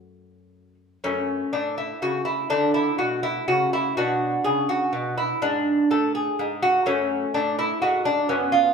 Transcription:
0.00 0.98 F#2 medium
0.00 0.98 A3 soft
0.00 0.99 C#4 soft
0.00 0.74 F#4 medium
1.04 1.44 F#2 medium
1.04 2.47 A3 soft
1.04 1.51 C#4 medium
1.53 1.93 A2 soft
1.53 1.77 D4 medium
1.78 2.01 E4 medium
2.02 2.41 C#3 medium
2.02 2.25 F#4 medium
2.25 2.49 E4 medium
2.50 2.89 D3 medium
2.50 3.92 A3 soft
2.50 2.74 D4 medium
2.74 2.98 E4 medium
2.98 3.38 B2 soft
2.98 3.22 F#4 medium
3.23 3.47 E4 medium
3.48 3.87 C#3 medium
3.48 3.71 F#4 medium
3.73 3.96 E4 medium
3.97 4.35 B2 medium
3.97 5.41 D4 soft
3.97 4.42 F#4 medium
4.44 4.83 C#3 medium
4.44 4.67 G#4 medium
4.69 5.15 F#4 medium
4.93 5.31 B2 medium
5.18 5.40 E4 medium
5.42 5.80 G#2 medium
5.42 5.88 D4 medium
5.91 6.29 A2 medium
5.91 6.13 A4 medium
6.15 6.61 G#4 medium
6.39 6.77 G#2 medium
6.62 6.85 F#4 medium
6.86 7.25 F#2 medium
6.86 8.25 A3 soft
6.86 7.32 C#4 medium
7.34 7.72 A2 medium
7.34 7.57 D4 medium
7.59 7.81 E4 medium
7.82 8.20 G#2 medium
7.82 8.04 F#4 medium
8.05 8.28 D4 medium
8.29 8.67 F#2 medium
8.29 8.74 B3 soft
8.29 8.52 C#4 medium
8.52 8.74 F4 medium

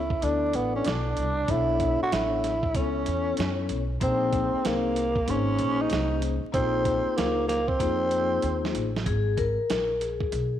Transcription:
0.00 0.19 C#2 medium
0.00 0.25 E4 medium
0.10 kick medium
0.21 0.52 D2 medium
0.21 1.25 B3 medium
0.21 1.25 D4 medium
0.21 0.57 D4 medium
0.21 1.26 E4 medium
0.21 1.26 A4 medium
0.21 1.26 D5 medium
0.21 closed hi-hat medium
0.53 0.84 A1 medium
0.53 0.75 B3 medium
0.53 closed hi-hat medium
0.75 0.88 C#4 medium
0.84 1.16 B1 loud
0.84 1.52 D4 medium
0.84 snare loud
0.84 closed hi-hat medium
1.17 1.47 C2 medium
1.17 closed hi-hat medium
1.48 1.98 B1 loud
1.48 2.52 B3 medium
1.48 2.52 D4 medium
1.48 2.52 E4 medium
1.48 2.01 E4 loud
1.48 2.52 A4 medium
1.48 2.52 C#5 medium
1.48 kick medium
1.48 closed hi-hat medium
1.80 kick medium
1.80 closed hi-hat medium
2.01 2.15 F#4 loud
2.01 muted upright bass stroke soft
2.12 2.74 A1 medium
2.12 2.78 E4 medium
2.12 snare loud
2.12 closed hi-hat medium
2.44 snare soft
2.44 closed hi-hat medium
2.63 kick medium
2.74 3.05 C#2 medium
2.74 3.78 B3 medium
2.74 3.78 C#4 medium
2.74 3.70 C#4 medium
2.74 3.79 E4 medium
2.74 3.79 A4 medium
2.74 3.79 C#5 medium
2.74 kick medium
2.74 closed hi-hat medium
3.06 3.37 E2 medium
3.06 closed hi-hat medium
3.37 3.68 F#2 medium
3.37 snare loud
3.37 closed hi-hat medium
3.69 4.00 B1 medium
3.69 closed hi-hat medium
4.00 4.50 A#1 loud
4.00 5.04 A#3 medium
4.00 5.05 C4 medium
4.00 4.68 C4 medium
4.00 5.05 D#4 medium
4.00 5.05 G#4 medium
4.00 5.05 C5 medium
4.00 kick medium
4.00 closed hi-hat medium
4.32 kick medium
4.32 closed hi-hat medium
4.54 muted upright bass stroke soft
4.65 5.29 C2 medium
4.65 5.31 A#3 medium
4.65 snare loud
4.65 closed hi-hat medium
4.96 closed hi-hat medium
5.16 kick medium
5.26 5.57 G#1 medium
5.26 6.30 A#3 medium
5.26 5.35 C4 soft
5.26 6.31 D#4 medium
5.26 6.31 G#4 medium
5.26 6.31 C5 medium
5.26 closed hi-hat medium
5.30 5.83 C#4 medium
5.30 6.34 C#4 medium
5.59 5.89 A#1 medium
5.59 closed hi-hat medium
5.81 6.23 D#4 medium
5.90 6.40 C2 medium
5.90 snare loud
5.90 closed hi-hat medium
6.22 closed hi-hat medium
6.43 muted upright bass stroke soft
6.52 7.03 A#1 loud
6.52 7.57 A#3 medium
6.52 7.18 C4 loud
6.52 7.57 D#4 medium
6.52 7.57 F4 medium
6.52 7.57 G#4 medium
6.52 7.58 C5 medium
6.52 kick medium
6.52 closed hi-hat medium
6.85 kick medium
6.85 closed hi-hat medium
7.06 muted upright bass stroke soft
7.17 7.77 C#2 medium
7.17 7.47 A#3 medium
7.17 snare loud
7.17 closed hi-hat medium
7.48 7.70 A#3 medium
7.48 snare soft
7.48 closed hi-hat medium
7.68 8.74 C4 loud
7.68 kick medium
7.79 8.40 F2 medium
7.79 8.83 A#3 medium
7.79 8.83 D#4 medium
7.79 8.83 F4 medium
7.79 8.84 G#4 medium
7.79 8.84 C5 medium
7.79 kick medium
7.79 closed hi-hat medium
8.11 closed hi-hat medium
8.42 8.73 D#2 medium
8.42 closed hi-hat medium
8.65 snare medium
8.75 9.05 A1 medium
8.75 closed hi-hat medium
8.96 snare medium
9.06 9.55 G#1 loud
9.06 9.39 G#4 loud
9.06 kick medium
9.06 closed hi-hat medium
9.37 10.03 A#4 loud
9.37 kick medium
9.37 closed hi-hat medium
9.58 muted upright bass stroke soft
9.70 10.30 A#1 medium
9.70 snare loud
9.70 closed hi-hat medium
10.00 10.60 G#4 medium
10.00 closed hi-hat medium
10.20 kick medium
10.32 10.60 B1 medium
10.32 closed hi-hat medium

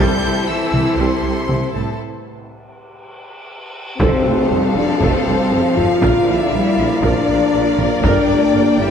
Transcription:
0.00 0.21 G3 medium
0.00 0.48 G3 medium
0.00 1.96 C4 medium
0.00 1.95 E4 medium
0.00 2.00 E4 medium
0.00 0.46 G4 medium
0.00 1.95 A4 medium
0.00 1.99 A4 medium
0.00 1.95 C5 medium
0.00 1.96 C5 medium
0.00 0.48 G6 loud
0.22 0.30 C2 medium
0.22 0.34 C2 medium
0.22 0.32 C4 soft
0.46 0.99 E3 medium
0.46 0.97 E4 medium
0.46 0.99 E6 medium
0.72 0.80 C2 medium
0.72 0.85 C2 medium
0.72 0.81 C4 medium
0.72 taiko mid soft
0.97 1.05 C2 medium
0.97 1.10 C2 medium
0.97 1.74 C3 medium
0.97 1.21 G3 medium
0.97 1.74 C4 medium
0.97 1.72 C6 medium
1.23 1.31 C2 medium
1.23 1.35 C2 medium
1.23 1.32 C4 soft
1.48 1.56 C2 soft
1.48 1.60 C2 soft
1.48 1.58 A3 soft
1.48 taiko mid medium
1.72 1.82 C2 soft
1.72 1.85 C2 soft
1.72 1.99 A2 medium
1.72 1.98 A3 medium
1.72 1.83 C4 medium
1.72 1.98 A5 medium
3.97 4.10 F1 medium
3.97 4.24 F3 medium
3.97 4.71 C4 loud
3.97 4.24 A4 medium
3.97 5.99 A4 medium
3.97 taiko loud
3.97 tam-tam medium
4.01 4.09 F1 medium
4.01 8.01 F3 medium
4.01 5.99 C4 medium
4.01 5.99 A4 medium
4.01 4.73 C5 medium
4.01 8.00 F5 medium
4.01 5.99 F5 medium
4.26 4.37 F1 medium
4.26 4.35 F1 medium
4.26 4.51 A3 medium
4.26 4.34 A4 medium
4.50 4.61 F1 medium
4.50 4.60 F1 medium
4.50 4.76 G3 medium
4.50 4.59 A4 medium
4.75 4.86 F1 medium
4.75 4.84 F1 medium
4.75 5.01 F3 medium
4.75 5.01 D4 medium
4.75 4.86 A4 medium
4.75 5.02 D5 medium
5.01 5.10 F1 medium
5.01 5.12 F1 medium
5.01 5.26 A3 medium
5.01 5.77 C4 loud
5.01 5.25 A4 medium
5.01 5.78 C5 medium
5.01 taiko medium
5.27 5.35 F1 medium
5.27 5.37 F1 medium
5.27 5.51 G3 medium
5.27 5.36 A4 medium
5.51 5.62 F1 medium
5.51 5.60 F1 medium
5.51 6.02 F3 medium
5.51 5.60 A4 medium
5.76 5.87 F1 medium
5.76 5.86 F1 medium
5.76 6.27 F4 loud
5.76 5.86 A4 medium
5.76 6.28 F5 medium
5.76 taiko low-mid medium
6.02 6.12 A#1 medium
6.02 6.10 A#1 medium
6.02 6.53 D3 medium
6.02 8.91 A#3 medium
6.02 6.26 A#4 medium
6.02 8.91 A#4 medium
6.02 8.91 D5 medium
6.02 taiko medium
6.27 6.35 A#1 medium
6.27 6.38 A#1 medium
6.27 7.04 E4 loud
6.27 6.37 A#4 medium
6.27 7.03 E5 medium
6.51 6.59 A#1 medium
6.51 6.64 A#1 medium
6.51 6.79 G3 medium
6.51 6.61 A#4 medium
6.77 6.85 A#1 medium
6.77 6.89 A#1 medium
6.77 8.05 F3 medium
6.77 6.86 A#4 medium
7.02 7.10 A#1 medium
7.02 7.14 A#1 medium
7.02 7.79 D4 loud
7.02 7.27 A#4 medium
7.02 7.78 D5 medium
7.02 taiko medium
7.28 7.36 A#1 medium
7.28 7.40 A#1 medium
7.28 7.37 A#4 medium
7.53 7.61 A#1 medium
7.53 7.64 A#1 medium
7.53 7.63 A#4 medium
7.78 7.86 A#1 medium
7.78 7.90 A#1 medium
7.78 8.04 A#3 medium
7.78 8.04 A#4 medium
7.78 7.87 A#4 medium
7.78 taiko low-mid medium
8.02 8.10 G1 medium
8.02 8.15 G1 medium
8.02 8.29 G3 medium
8.02 8.78 D4 loud
8.02 8.91 G4 medium
8.02 8.27 A#4 loud
8.02 8.81 D5 medium
8.02 8.91 G5 medium
8.02 taiko loud
8.28 8.36 G1 medium
8.28 8.40 G1 medium
8.28 8.55 A3 medium
8.28 8.38 A#4 medium
8.52 8.60 G1 medium
8.52 8.65 G1 medium
8.52 8.79 A#3 medium
8.52 8.62 A#4 medium
8.78 8.86 G1 medium
8.78 8.91 G1 medium
8.78 8.91 G3 medium
8.78 8.91 E4 medium
8.78 8.88 A#4 medium
8.78 8.91 E5 medium

